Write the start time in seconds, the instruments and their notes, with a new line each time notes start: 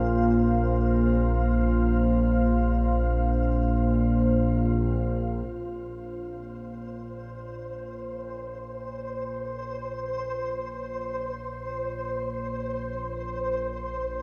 Already playing: synth drone A#1 A#2, ambient pad A#3 C5 F5, synth texture C5
5.45 synth drone A#1 A#2, synth texture C5